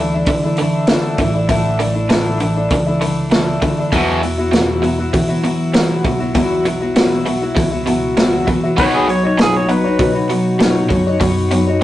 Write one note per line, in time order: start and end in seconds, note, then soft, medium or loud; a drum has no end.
0.00 0.24 D2 loud
0.00 0.25 D3 medium
0.00 0.13 E3 medium
0.00 0.25 E3 medium
0.00 0.13 A3 medium
0.00 0.13 D4 medium
0.00 0.13 E4 medium
0.14 0.44 A3 soft
0.14 0.44 D4 soft
0.14 0.42 E4 medium
0.26 1.20 D3 medium
0.26 0.55 D3 medium
0.26 0.55 E3 medium
0.26 kick loud
0.26 open hi-hat medium
0.43 0.59 A3 soft
0.43 0.59 D4 medium
0.43 0.58 E4 medium
0.57 0.86 D3 medium
0.57 0.86 E3 medium
0.57 0.88 E3 medium
0.57 0.88 A3 medium
0.57 0.89 D4 medium
0.57 open hi-hat soft
0.61 0.89 E4 medium
0.87 1.16 D3 medium
0.87 1.19 D3 medium
0.87 1.18 E3 medium
0.87 1.16 E3 medium
0.87 1.19 A3 medium
0.87 1.20 D4 medium
0.87 1.20 E4 medium
0.87 snare loud
0.87 open hi-hat medium
1.18 1.47 A1 medium
1.18 1.46 D3 medium
1.18 1.34 E3 medium
1.18 1.46 E3 medium
1.18 1.35 A3 soft
1.18 1.33 D4 medium
1.18 1.32 E4 medium
1.18 kick medium
1.18 open hi-hat soft
1.33 1.48 A3 soft
1.33 1.48 D4 medium
1.33 1.49 E4 medium
1.48 2.67 A1 medium
1.48 1.79 D3 medium
1.48 1.77 D3 medium
1.48 1.78 E3 medium
1.48 1.77 E3 medium
1.48 1.79 A3 medium
1.48 1.79 D4 medium
1.48 1.79 E4 medium
1.48 kick medium
1.48 open hi-hat medium
1.79 2.07 D3 medium
1.79 1.95 E3 soft
1.79 2.07 E3 medium
1.79 1.94 A3 medium
1.79 1.94 D4 medium
1.79 1.92 E4 medium
1.79 open hi-hat soft
1.94 2.09 A3 soft
1.94 2.09 D4 soft
1.94 2.10 E4 medium
2.09 2.40 D3 medium
2.09 2.37 D3 medium
2.09 2.39 E3 medium
2.09 2.37 E3 medium
2.09 2.39 A3 medium
2.09 2.40 D4 medium
2.09 2.41 E4 medium
2.09 snare medium
2.09 open hi-hat medium
2.40 2.68 D3 medium
2.40 2.55 E3 medium
2.40 2.68 E3 medium
2.40 2.56 A3 medium
2.40 2.55 D4 medium
2.40 2.55 E4 medium
2.40 open hi-hat soft
2.56 2.87 A3 soft
2.56 2.86 D4 soft
2.56 2.85 E4 medium
2.70 3.58 C#2 medium
2.70 2.98 D3 medium
2.70 2.98 E3 medium
2.70 kick medium
2.70 open hi-hat medium
2.86 3.01 A3 soft
2.86 3.02 D4 soft
2.86 3.01 E4 medium
3.01 3.28 D3 medium
3.01 3.31 E3 medium
3.01 3.29 E3 medium
3.01 3.31 A3 medium
3.01 3.32 D4 medium
3.01 3.32 E4 medium
3.01 open hi-hat soft
3.31 3.59 D3 medium
3.31 3.59 E3 medium
3.31 3.61 E3 medium
3.31 3.63 A3 medium
3.31 3.63 D4 medium
3.31 3.63 E4 medium
3.31 snare loud
3.31 open hi-hat medium
3.62 3.89 D3 medium
3.62 3.90 D3 medium
3.62 3.89 E3 medium
3.62 3.77 E3 medium
3.62 3.78 A3 medium
3.62 3.78 D4 medium
3.62 3.77 E4 medium
3.62 kick medium
3.62 open hi-hat soft
3.78 3.93 A3 soft
3.78 3.94 D4 medium
3.78 3.93 E4 medium
3.92 4.21 E2 medium
3.92 5.10 E2 medium
3.92 4.23 E2 medium
3.92 4.21 B2 medium
3.92 4.21 E3 medium
3.92 4.23 E3 medium
3.92 4.22 F#3 medium
3.92 4.22 B3 medium
3.92 4.23 E4 medium
3.92 4.23 F#4 medium
3.92 kick medium
3.92 open hi-hat medium
4.22 4.50 E2 medium
4.22 4.50 B2 medium
4.22 4.38 F#3 medium
4.22 4.38 B3 medium
4.22 4.37 E4 medium
4.22 4.37 F#4 medium
4.22 open hi-hat soft
4.38 4.52 F#3 soft
4.38 4.52 B3 soft
4.38 4.53 E4 soft
4.38 4.52 F#4 soft
4.52 4.80 E2 medium
4.52 4.83 E2 medium
4.52 4.80 B2 medium
4.52 4.83 E3 medium
4.52 4.81 F#3 medium
4.52 4.82 B3 medium
4.52 4.83 E4 medium
4.52 4.83 F#4 medium
4.52 snare loud
4.52 open hi-hat medium
4.83 5.10 E2 medium
4.83 5.10 B2 medium
4.83 4.98 F#3 medium
4.83 4.98 B3 medium
4.83 4.97 E4 medium
4.83 4.98 F#4 medium
4.83 open hi-hat soft
4.98 5.29 F#3 soft
4.98 5.28 B3 soft
4.98 5.27 E4 medium
4.98 5.28 F#4 soft
5.13 5.41 E2 medium
5.13 5.41 B2 medium
5.13 6.06 E3 medium
5.13 kick loud
5.13 open hi-hat medium
5.28 5.42 F#3 soft
5.28 5.43 B3 soft
5.28 5.44 E4 medium
5.28 5.44 F#4 medium
5.43 5.71 E2 medium
5.43 5.71 B2 medium
5.43 5.73 F#3 medium
5.43 5.73 B3 medium
5.43 5.73 E4 medium
5.43 5.74 F#4 medium
5.43 open hi-hat soft
5.74 6.04 E2 medium
5.74 6.02 E2 medium
5.74 6.02 B2 medium
5.74 6.04 E3 medium
5.74 6.02 F#3 medium
5.74 6.03 B3 medium
5.74 6.04 E4 medium
5.74 6.04 F#4 medium
5.74 snare loud
5.74 open hi-hat medium
6.03 6.33 B1 medium
6.03 6.32 E2 medium
6.03 6.32 B2 medium
6.03 6.19 F#3 medium
6.03 6.19 B3 medium
6.03 6.18 E4 medium
6.03 6.19 F#4 medium
6.03 kick medium
6.03 open hi-hat soft
6.19 6.34 F#3 soft
6.19 6.34 B3 medium
6.19 6.34 E4 medium
6.19 6.34 F#4 medium
6.34 7.53 B1 medium
6.34 6.65 E2 medium
6.34 6.62 E2 medium
6.34 6.63 B2 medium
6.34 6.65 E3 medium
6.34 6.63 F#3 medium
6.34 6.63 B3 medium
6.34 6.65 E4 medium
6.34 6.65 F#4 medium
6.34 kick medium
6.34 open hi-hat medium
6.64 6.93 E2 medium
6.64 6.93 B2 medium
6.64 6.80 F#3 medium
6.64 6.80 B3 medium
6.64 6.80 E4 medium
6.64 6.80 F#4 medium
6.64 open hi-hat soft
6.81 6.95 F#3 soft
6.81 6.95 B3 soft
6.81 6.96 E4 soft
6.81 6.95 F#4 medium
6.95 7.26 E2 medium
6.95 7.23 E2 medium
6.95 7.23 B2 medium
6.95 7.26 E3 medium
6.95 7.25 F#3 medium
6.95 7.26 B3 medium
6.95 7.27 E4 medium
6.95 7.26 F#4 medium
6.95 snare loud
6.95 open hi-hat medium
7.26 7.53 E2 medium
7.26 7.54 B2 medium
7.26 7.41 F#3 medium
7.26 7.42 B3 medium
7.26 7.40 E4 medium
7.26 7.41 F#4 medium
7.26 open hi-hat soft
7.42 7.72 F#3 soft
7.42 7.71 B3 soft
7.42 7.70 E4 medium
7.42 7.71 F#4 medium
7.56 8.44 C#2 medium
7.56 7.84 E2 medium
7.56 7.84 B2 medium
7.56 kick loud
7.56 open hi-hat medium
7.71 7.85 F#3 soft
7.71 7.86 B3 soft
7.71 7.87 E4 soft
7.71 7.86 F#4 medium
7.86 8.14 E2 medium
7.86 8.14 B2 medium
7.86 8.16 F#3 medium
7.86 8.16 B3 medium
7.86 8.17 E4 medium
7.86 8.17 F#4 medium
7.86 open hi-hat medium
8.17 8.47 E2 medium
8.17 8.45 E2 medium
8.17 8.45 B2 medium
8.17 8.48 E3 medium
8.17 8.46 F#3 medium
8.17 8.47 B3 medium
8.17 8.48 E4 medium
8.17 8.47 F#4 medium
8.17 snare loud
8.17 open hi-hat medium
8.47 8.75 E2 medium
8.47 8.75 B2 medium
8.47 8.76 E3 medium
8.47 8.63 F#3 medium
8.47 8.63 B3 medium
8.47 8.62 E4 medium
8.47 8.63 F#4 medium
8.47 kick medium
8.47 open hi-hat soft
8.63 8.78 F#3 medium
8.63 8.77 B3 soft
8.63 8.78 E4 medium
8.63 8.77 F#4 medium
8.77 9.96 B1 medium
8.77 9.06 B2 medium
8.77 9.06 F#3 loud
8.77 9.06 B3 medium
8.77 9.07 B3 medium
8.77 9.07 D#4 medium
8.77 9.08 F#4 medium
8.77 9.08 C#5 medium
8.77 8.94 C#5 medium
8.77 kick loud
8.77 open hi-hat medium
8.94 9.09 G#4 medium
9.07 9.35 B2 medium
9.07 9.35 F#3 medium
9.07 9.23 B3 medium
9.07 9.23 D#4 medium
9.07 9.23 F#4 medium
9.07 9.22 C#5 medium
9.07 9.24 C#5 medium
9.07 open hi-hat soft
9.23 9.38 D#4 soft
9.23 9.38 F#4 soft
9.23 9.38 C#5 medium
9.23 9.40 C#5 medium
9.38 9.65 B2 medium
9.38 9.66 F#3 medium
9.38 9.67 B3 medium
9.38 9.67 D#4 medium
9.38 9.68 F#4 medium
9.38 9.55 G#4 medium
9.38 9.69 C#5 medium
9.38 snare loud
9.38 open hi-hat medium
9.57 9.70 C#5 medium
9.68 9.96 B2 medium
9.68 9.96 F#3 medium
9.68 9.84 B3 medium
9.68 9.84 D#4 medium
9.68 9.84 F#4 medium
9.68 10.29 B4 medium
9.68 9.83 C#5 medium
9.68 open hi-hat soft
9.84 10.14 D#4 soft
9.84 10.14 F#4 soft
9.84 10.12 C#5 medium
9.99 10.27 B2 medium
9.99 10.91 B2 medium
9.99 10.27 F#3 medium
9.99 kick loud
9.99 open hi-hat medium
10.13 10.28 D#4 soft
10.13 10.29 F#4 medium
10.13 10.29 C#5 soft
10.28 10.57 B2 medium
10.28 10.57 F#3 medium
10.28 10.59 B3 medium
10.28 10.59 D#4 medium
10.28 10.59 F#4 medium
10.28 10.60 C#5 medium
10.28 open hi-hat soft
10.59 10.87 B2 medium
10.59 10.87 F#3 medium
10.59 10.90 B3 medium
10.59 10.90 D#4 medium
10.59 10.91 F#4 medium
10.59 10.91 C#5 medium
10.59 snare loud
10.59 open hi-hat medium
10.89 11.19 F#2 medium
10.89 11.17 B2 medium
10.89 11.17 F#3 medium
10.89 11.06 B3 medium
10.89 11.06 D#4 medium
10.89 11.06 F#4 medium
10.89 11.06 C#5 medium
10.89 kick medium
10.89 open hi-hat soft
11.07 11.21 D#4 soft
11.07 11.21 F#4 medium
11.07 11.21 C#5 medium
11.20 11.84 F#2 medium
11.20 11.48 B2 medium
11.20 11.48 F#3 medium
11.20 11.51 B3 medium
11.20 11.52 D#4 medium
11.20 11.52 F#4 medium
11.20 11.52 C#5 medium
11.20 kick medium
11.20 open hi-hat medium
11.51 11.78 B2 medium
11.51 11.78 F#3 medium
11.51 11.67 B3 medium
11.51 11.67 D#4 medium
11.51 11.67 F#4 medium
11.51 11.66 C#5 medium
11.51 open hi-hat medium
11.67 11.82 D#4 soft
11.67 11.82 F#4 soft
11.67 11.82 C#5 medium